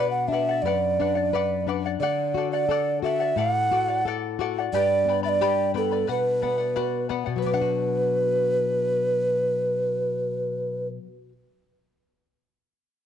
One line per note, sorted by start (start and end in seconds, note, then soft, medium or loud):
0.00 0.61 B2 medium
0.00 0.29 B4 medium
0.00 0.31 B4 medium
0.00 0.31 D5 medium
0.00 0.32 F#5 medium
0.11 0.30 F#5 medium
0.28 0.63 D4 medium
0.28 0.64 E5 medium
0.32 0.49 B4 medium
0.32 0.49 D5 medium
0.32 0.48 F#5 medium
0.49 0.64 D5 soft
0.49 0.65 F#5 medium
0.62 1.96 F#2 medium
0.62 0.99 B4 medium
0.62 1.66 D5 medium
0.62 0.99 D5 medium
0.67 1.00 F#5 medium
1.00 1.33 D4 soft
1.00 1.17 B4 soft
1.00 1.16 D5 medium
1.00 1.14 F#5 medium
1.15 1.33 D5 soft
1.15 1.33 F#5 medium
1.33 1.66 B4 medium
1.33 1.68 D5 medium
1.33 1.68 F#5 medium
1.67 2.00 D4 soft
1.67 1.84 B4 medium
1.67 1.85 D5 medium
1.67 1.84 F#5 medium
1.86 2.01 D5 soft
1.86 2.02 F#5 soft
2.00 3.33 D3 medium
2.00 2.36 A4 medium
2.00 2.48 D5 medium
2.00 2.36 D5 medium
2.00 2.36 F#5 medium
2.34 2.68 F#4 medium
2.34 2.53 A4 soft
2.34 2.53 D5 soft
2.34 2.52 F#5 medium
2.52 2.99 D5 medium
2.52 2.69 D5 soft
2.52 2.70 F#5 soft
2.69 3.02 A4 medium
2.69 3.03 A4 medium
2.69 3.03 D5 medium
2.69 3.04 F#5 medium
3.03 3.36 F#4 soft
3.03 3.21 A4 medium
3.03 3.20 D5 medium
3.03 3.40 E5 medium
3.03 3.19 F#5 medium
3.20 3.37 D5 soft
3.20 3.37 F#5 medium
3.36 4.68 A2 medium
3.36 3.71 A4 medium
3.36 3.71 D5 medium
3.36 3.72 F#5 medium
3.36 4.06 F#5 loud
3.72 4.04 F#4 soft
3.72 3.89 A4 soft
3.72 3.88 D5 medium
3.72 3.87 F#5 medium
3.88 4.06 D5 soft
3.88 4.05 F#5 medium
4.05 4.38 A4 medium
4.05 4.39 A4 medium
4.05 4.39 D5 medium
4.05 4.40 F#5 medium
4.39 4.72 F#4 medium
4.39 4.57 A4 medium
4.39 4.57 D5 medium
4.39 4.57 F#5 medium
4.59 4.74 D5 soft
4.59 4.74 F#5 soft
4.73 6.04 G2 medium
4.73 5.08 G4 medium
4.73 5.07 B4 medium
4.73 5.20 D5 loud
4.73 5.08 D5 medium
4.73 5.07 G5 medium
4.73 5.08 B5 medium
5.05 5.39 B3 medium
5.05 5.23 B4 medium
5.05 5.25 G5 soft
5.09 5.23 D5 medium
5.09 5.22 B5 medium
5.23 5.41 B4 soft
5.23 5.40 D5 soft
5.23 5.30 E5 medium
5.23 5.40 B5 medium
5.29 5.72 D5 loud
5.41 5.74 G4 medium
5.41 5.75 G4 medium
5.41 5.73 B4 medium
5.41 5.74 D5 medium
5.41 5.73 G5 medium
5.41 5.74 B5 medium
5.74 6.07 B3 soft
5.74 6.07 A4 medium
5.74 5.91 B4 medium
5.74 5.91 D5 medium
5.74 5.91 G5 medium
5.74 5.90 B5 medium
5.91 6.06 B4 soft
5.91 6.07 D5 soft
5.91 6.08 B5 soft
6.07 7.26 B2 medium
6.07 6.41 B4 medium
6.07 7.07 B4 medium
6.07 6.41 D5 medium
6.07 6.42 F#5 medium
6.42 6.75 B3 medium
6.42 6.59 B4 soft
6.42 6.58 D5 medium
6.42 6.57 F#5 medium
6.58 6.75 D5 soft
6.58 6.75 F#5 medium
6.76 7.09 F#4 medium
6.76 7.08 B4 medium
6.76 7.08 D5 medium
6.76 7.09 F#5 medium
7.09 7.43 B3 soft
7.09 7.26 B4 medium
7.09 7.25 D5 medium
7.09 7.25 F#5 medium
7.26 10.98 B2 soft
7.26 7.37 D5 soft
7.26 7.43 F#5 medium
7.36 11.07 F#3 soft
7.36 11.13 B4 medium
7.42 11.16 B3 soft
7.42 10.88 B4 medium
7.42 11.21 D5 medium
7.54 11.24 D4 soft
7.54 11.28 F#5 medium
7.61 11.32 F#4 medium